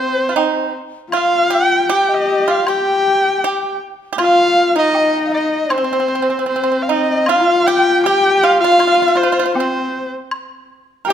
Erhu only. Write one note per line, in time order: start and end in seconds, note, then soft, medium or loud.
0.00 0.74 C5 medium
1.14 1.55 F5 medium
1.53 1.91 G5 medium
1.93 2.16 G5 medium
2.14 2.52 D#5 medium
2.51 2.68 F5 medium
2.70 3.78 G5 medium
4.22 4.74 F5 loud
4.79 5.30 D#5 medium
5.34 5.74 D#5 medium
5.72 6.49 C5 medium
6.49 6.84 C5 medium
6.82 6.93 F5 medium
6.91 7.30 D#5 medium
7.29 7.68 F5 medium
7.67 8.03 G5 loud
8.04 8.46 G5 medium
8.44 8.60 F5 medium
8.60 9.19 F5 loud
9.17 9.54 C5 medium
9.55 10.09 C5 medium
11.07 11.13 G5 medium